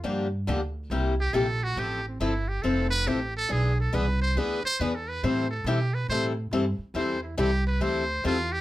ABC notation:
X:1
M:4/4
L:1/8
Q:"Swing" 1/4=139
K:Am
V:1 name="Muted trumpet"
z4 z G A ^F | G C E G A B G A | ^G A B c B c (3B A B | c A G B c z3 |
c E G B c2 F G |]
V:2 name="Steel-string acoustic guitar"
[D,F,_B,DG] z [D,F,B,DG] z [C,G,B,EG] z [C,G,B,EG] z | [F,CEA] z [F,CEA] z [F,CEA] z [F,CEA] z | [E,B,D^G] z [E,B,DG] z [E,B,DG] z [E,B,DG] z | [E,G,CEA] z [E,G,CEA] z [E,G,CEA] z [E,G,CEA] z |
[E,G,CEA] z [E,G,CEA] z [E,G,CEA] z [E,G,CEA] z |]
V:3 name="Upright bass" clef=bass
G,,2 D,,2 C,,2 _B,,,2 | A,,,2 G,,,2 F,,,2 A,,,2 | B,,,2 C,,2 D,, z E,,2 | A,,2 B,,2 A,,2 G,, z |
E,,2 C,,2 D,,2 E,,2 |]